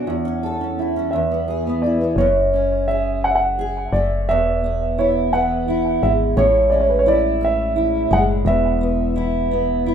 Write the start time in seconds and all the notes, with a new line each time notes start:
Already playing: F#3 D4 F#4 C#5 F#5
0.07 E2
0.25 C#4
0.43 A4
0.61 C#4
0.79 E4
0.96 C#4
1.11 E2 E5
1.31 B3
1.48 G#4
1.67 B3
1.82 E4 D5
2.01 B3
2.16 F#1 F#2 C#5
2.54 C#4
2.88 G#4 E5
3.24 F#5
3.31 E5
3.35 F#5
3.59 G#4
3.92 F#1 A3 D5
4.28 E1 E2 E5
4.64 B3
4.98 E4 C#5
5.33 B3 F#5
5.68 E4
6.03 G#1 G#3 E5
6.37 A1 A2 C#5
6.70 C#4 D5
6.80 C#5
6.90 B4
6.99 C#5
7.06 E4 D5
7.41 C#4 E5
7.76 E4
8.11 F#1 G#3 F#5
8.45 E1 E2 E5
8.81 B3
9.16 E4
9.51 B3
9.86 E4